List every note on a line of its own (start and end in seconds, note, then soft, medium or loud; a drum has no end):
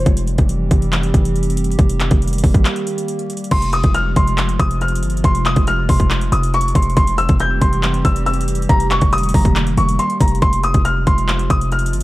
0.06 0.37 F1 loud
0.06 1.77 E3 medium
0.06 1.77 G3 medium
0.06 1.77 C4 medium
0.06 3.48 G4 medium
0.06 kick loud
0.06 closed hi-hat medium
0.17 closed hi-hat medium
0.27 closed hi-hat medium
0.38 0.70 F1 loud
0.38 kick medium
0.38 closed hi-hat medium
0.49 closed hi-hat medium
0.71 1.12 F1 loud
0.71 kick medium
0.71 closed hi-hat medium
0.82 closed hi-hat medium
0.92 clap loud
0.92 closed hi-hat medium
1.03 closed hi-hat medium
1.14 1.76 F1 loud
1.14 kick medium
1.14 closed hi-hat medium
1.25 closed hi-hat medium
1.36 closed hi-hat soft
1.43 closed hi-hat medium
1.50 closed hi-hat medium
1.57 closed hi-hat medium
1.64 closed hi-hat medium
1.72 closed hi-hat soft
1.79 2.10 F1 loud
1.79 3.50 D#3 medium
1.79 3.50 G3 medium
1.79 3.50 A#3 medium
1.79 kick loud
1.79 closed hi-hat medium
1.90 closed hi-hat medium
2.00 clap loud
2.00 closed hi-hat medium
2.11 2.42 F1 loud
2.11 kick medium
2.11 closed hi-hat medium
2.22 closed hi-hat soft
2.27 closed hi-hat medium
2.33 closed hi-hat medium
2.38 closed hi-hat medium
2.44 2.54 F1 loud
2.44 kick medium
2.44 open hi-hat medium
2.54 2.65 G#1 loud
2.54 kick medium
2.54 closed hi-hat medium
2.65 clap loud
2.65 closed hi-hat medium
2.76 closed hi-hat soft
2.87 closed hi-hat medium
2.98 closed hi-hat medium
3.08 closed hi-hat medium
3.19 closed hi-hat soft
3.30 closed hi-hat medium
3.37 closed hi-hat medium
3.44 closed hi-hat soft
3.51 3.83 F1 loud
3.51 6.93 C3 medium
3.51 6.93 F3 medium
3.51 6.93 G#3 medium
3.51 6.93 F4 medium
3.51 3.68 C6 loud
3.51 kick loud
3.51 closed hi-hat medium
3.51 crash loud
3.62 closed hi-hat medium
3.73 3.89 D#6 medium
3.73 closed hi-hat medium
3.83 4.15 F1 loud
3.83 kick medium
3.83 closed hi-hat medium
3.94 4.11 F6 loud
3.94 closed hi-hat medium
4.16 4.58 F1 loud
4.16 4.57 C6 medium
4.16 kick loud
4.16 closed hi-hat medium
4.27 closed hi-hat medium
4.38 clap loud
4.38 closed hi-hat medium
4.49 closed hi-hat medium
4.59 5.04 F1 loud
4.59 4.76 D#6 medium
4.59 kick loud
4.59 closed hi-hat medium
4.71 closed hi-hat medium
4.81 5.22 F6 medium
4.81 closed hi-hat soft
4.88 closed hi-hat medium
4.95 closed hi-hat medium
5.03 5.23 G1 loud
5.03 closed hi-hat medium
5.10 closed hi-hat medium
5.17 closed hi-hat medium
5.24 5.55 F1 loud
5.24 5.41 C6 loud
5.24 kick loud
5.24 closed hi-hat medium
5.35 closed hi-hat medium
5.45 5.62 D#6 medium
5.45 clap loud
5.45 closed hi-hat medium
5.56 5.88 F1 loud
5.56 kick medium
5.56 closed hi-hat medium
5.67 5.84 F6 loud
5.67 closed hi-hat medium
5.89 6.30 F1 loud
5.89 6.30 C6 medium
5.89 kick loud
5.89 open hi-hat medium
6.00 kick medium
6.00 closed hi-hat medium
6.10 clap loud
6.10 closed hi-hat medium
6.21 closed hi-hat medium
6.32 6.73 F1 loud
6.32 6.48 D#6 medium
6.32 closed hi-hat medium
6.43 closed hi-hat medium
6.54 6.70 C#6 medium
6.54 closed hi-hat soft
6.61 closed hi-hat medium
6.68 closed hi-hat medium
6.75 6.96 F1 loud
6.75 6.92 C6 medium
6.75 kick medium
6.75 closed hi-hat medium
6.82 closed hi-hat medium
6.90 closed hi-hat soft
6.97 7.28 F1 loud
6.97 8.68 E3 medium
6.97 8.68 G3 medium
6.97 8.68 C4 medium
6.97 10.39 G4 medium
6.97 7.13 C6 loud
6.97 kick loud
6.97 closed hi-hat medium
7.07 closed hi-hat medium
7.18 7.35 E6 loud
7.18 closed hi-hat medium
7.29 7.60 F1 loud
7.29 kick medium
7.29 closed hi-hat medium
7.40 7.57 G6 medium
7.40 closed hi-hat medium
7.61 8.03 F1 loud
7.61 8.02 C6 medium
7.61 kick medium
7.61 closed hi-hat medium
7.73 closed hi-hat medium
7.83 clap loud
7.83 closed hi-hat medium
7.94 closed hi-hat medium
8.05 8.67 F1 loud
8.05 8.21 E6 medium
8.05 kick loud
8.05 closed hi-hat medium
8.16 closed hi-hat medium
8.26 8.67 E6 medium
8.26 closed hi-hat soft
8.33 closed hi-hat medium
8.41 closed hi-hat medium
8.48 closed hi-hat medium
8.55 closed hi-hat medium
8.62 closed hi-hat soft
8.69 9.01 F1 loud
8.69 10.40 D#3 medium
8.69 10.40 G3 medium
8.69 10.40 A#3 medium
8.69 8.86 A#5 loud
8.69 kick loud
8.69 closed hi-hat medium
8.80 closed hi-hat medium
8.91 9.07 C#6 medium
8.91 clap loud
8.91 closed hi-hat medium
9.01 9.33 F1 loud
9.01 kick medium
9.01 closed hi-hat medium
9.13 9.29 D#6 loud
9.13 closed hi-hat soft
9.18 closed hi-hat medium
9.23 closed hi-hat medium
9.29 closed hi-hat medium
9.34 9.76 F1 loud
9.34 9.75 A#5 medium
9.34 kick medium
9.34 open hi-hat medium
9.45 kick medium
9.45 closed hi-hat medium
9.56 clap loud
9.56 closed hi-hat medium
9.67 closed hi-hat medium
9.77 9.98 F1 loud
9.77 9.94 C#6 medium
9.77 closed hi-hat medium
9.89 closed hi-hat medium
9.99 10.15 C6 medium
9.99 closed hi-hat medium
10.10 closed hi-hat soft
10.20 10.41 F1 loud
10.20 10.37 A#5 medium
10.20 kick medium
10.20 closed hi-hat medium
10.28 closed hi-hat medium
10.35 closed hi-hat soft
10.42 10.73 F1 loud
10.42 12.03 C3 medium
10.42 12.03 F3 medium
10.42 12.03 G#3 medium
10.42 12.03 F4 loud
10.42 10.58 C6 loud
10.42 kick loud
10.42 closed hi-hat medium
10.53 closed hi-hat medium
10.63 10.80 D#6 medium
10.63 closed hi-hat medium
10.74 11.06 F1 loud
10.74 kick medium
10.74 closed hi-hat medium
10.85 11.01 F6 medium
10.85 closed hi-hat medium
11.07 11.48 F1 loud
11.07 11.47 C6 medium
11.07 kick loud
11.07 closed hi-hat medium
11.18 closed hi-hat medium
11.28 clap loud
11.28 closed hi-hat medium
11.39 closed hi-hat medium
11.50 11.95 F1 loud
11.50 11.66 D#6 medium
11.50 kick loud
11.50 closed hi-hat medium
11.61 closed hi-hat medium
11.72 12.03 F6 medium
11.72 closed hi-hat soft
11.79 closed hi-hat medium
11.86 closed hi-hat medium
11.93 12.03 G1 loud
11.93 closed hi-hat medium